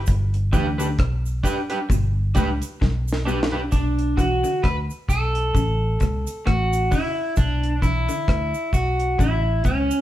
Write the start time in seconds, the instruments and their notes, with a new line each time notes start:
0.06 fingered electric bass G1, kick, closed hi-hat, cabasa
0.34 closed hi-hat
0.53 fingered electric bass D2, clean electric guitar E3 D4 G4 B4, kick, closed hi-hat, cabasa
0.78 clean electric guitar D3 D4 G4 B4, closed hi-hat, cabasa
0.99 fingered electric bass B1, kick, cross-stick, closed hi-hat
1.26 cabasa
1.44 clean electric guitar D4 G4 B4, kick, closed hi-hat, cabasa
1.70 clean electric guitar D4 G4 B4, closed hi-hat
1.90 fingered electric bass G1, clean electric guitar B2, kick, closed hi-hat, cabasa
2.35 fingered electric bass C#2, clean electric guitar A2 D4 G4 B4, kick, cross-stick, closed hi-hat, cabasa
2.62 closed hi-hat, cabasa
2.81 fingered electric bass B1, clean electric guitar G2, kick, snare
3.08 cabasa
3.13 snare
3.25 clean electric guitar B2 D4 G4 B4, cabasa
3.43 snare
3.52 clean electric guitar D4 G4 B4
3.72 fingered electric bass B1, clean electric guitar D4, kick, closed hi-hat, cabasa
3.99 closed hi-hat
4.17 fingered electric bass B1, clean electric guitar E3 F#4, kick, closed hi-hat, cabasa
4.44 clean electric guitar D3, closed hi-hat, cabasa
4.63 fingered electric bass D2, clean electric guitar B4, kick, cross-stick, closed hi-hat
4.90 cabasa
5.09 fingered electric bass B1, clean electric guitar A4, kick, closed hi-hat, cabasa
5.35 closed hi-hat
5.55 fingered electric bass A1, clean electric guitar C#3, kick, closed hi-hat, cabasa
6.00 fingered electric bass C#2, clean electric guitar B2, kick, cross-stick, closed hi-hat, cabasa
6.27 closed hi-hat, cabasa
6.46 fingered electric bass A1, clean electric guitar A2 F#4, kick, cross-stick, closed hi-hat
6.73 closed hi-hat, cabasa
6.91 clean electric guitar C#3 E4, kick, open hi-hat, cabasa
7.36 fingered electric bass B1, clean electric guitar D4, kick, closed hi-hat, cabasa
7.63 closed hi-hat
7.82 fingered electric bass B1, clean electric guitar E3 E4, kick, closed hi-hat, cabasa
8.08 clean electric guitar D3, closed hi-hat, cabasa
8.28 fingered electric bass D2, kick, cross-stick, closed hi-hat
8.54 cabasa
8.73 fingered electric bass B1, clean electric guitar F#4, kick, closed hi-hat, cabasa
9.00 closed hi-hat
9.19 fingered electric bass A1, clean electric guitar C#3 E4, kick, closed hi-hat, cabasa
9.64 fingered electric bass C#2, clean electric guitar B2 C#4, kick, closed hi-hat, cabasa
9.91 closed hi-hat, cabasa